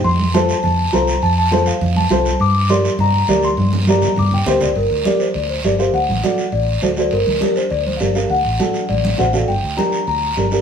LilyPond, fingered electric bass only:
\new Staff \with { instrumentName = "Fingered electric bass" } { \clef bass \time 4/4 \key g \minor \tempo 4 = 203 f,2 f,4 c,4 | f,2 f,4 c,4 | g,2 g,4 d,4 | g,2 g,4 d,4 |
g,,8 d,8 r4 d,4 g,,4 | d,8 a,,8 r4 a,,4 d,4 | g,,8 d,8 r4 d,4 g,,4 | d,8 a,,8 r4 a,,4 a,,4 |
g,,8 d,8 r4 d,4 g,,4 | }